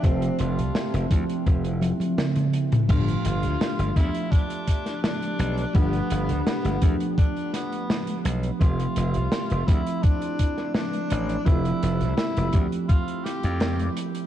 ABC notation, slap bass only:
X:1
M:4/4
L:1/16
Q:1/4=84
K:Gmix
V:1 name="Slap bass" clef=bass
F,,, z F,,, C,, z F,,, D,, z F,,,2 z6 | G,,, z G,,, D,, z G,,, E,, z6 z B,,, z | G,,, z G,,, D,, z G,,, E,, z6 z B,,, z | F,,, z F,,, C,, z F,,, D,, z6 z A,,, z |
F,,, z F,,, C,, z F,,, D,, z4 F,,2 z3 |]